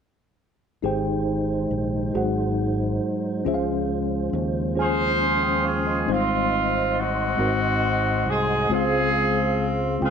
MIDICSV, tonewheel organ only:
0, 0, Header, 1, 2, 480
1, 0, Start_track
1, 0, Key_signature, -4, "major"
1, 0, Tempo, 874636
1, 460, Time_signature, 6, 3, 24, 8
1, 5543, End_track
2, 0, Start_track
2, 0, Title_t, "Tonewheel organ"
2, 0, Program_c, 0, 16
2, 455, Note_on_c, 0, 56, 40
2, 457, Note_on_c, 0, 51, 44
2, 460, Note_on_c, 0, 63, 38
2, 463, Note_on_c, 0, 72, 42
2, 1173, Note_off_c, 0, 51, 0
2, 1183, Note_on_c, 0, 54, 47
2, 1885, Note_off_c, 0, 56, 0
2, 1887, Note_off_c, 0, 63, 0
2, 1895, Note_off_c, 0, 54, 0
2, 1907, Note_on_c, 0, 53, 45
2, 1910, Note_on_c, 0, 56, 42
2, 1910, Note_on_c, 0, 61, 41
2, 3321, Note_off_c, 0, 72, 0
2, 3330, Note_off_c, 0, 53, 0
2, 3331, Note_off_c, 0, 56, 0
2, 3331, Note_off_c, 0, 61, 0
2, 3340, Note_on_c, 0, 75, 47
2, 3341, Note_on_c, 0, 72, 47
2, 3341, Note_on_c, 0, 84, 51
2, 4053, Note_off_c, 0, 75, 0
2, 4061, Note_on_c, 0, 75, 50
2, 4063, Note_on_c, 0, 78, 47
2, 4765, Note_off_c, 0, 72, 0
2, 4766, Note_off_c, 0, 84, 0
2, 4773, Note_off_c, 0, 75, 0
2, 4774, Note_off_c, 0, 78, 0
2, 4776, Note_on_c, 0, 68, 49
2, 4780, Note_on_c, 0, 77, 45
2, 5543, Note_off_c, 0, 68, 0
2, 5543, Note_off_c, 0, 77, 0
2, 5543, End_track
0, 0, End_of_file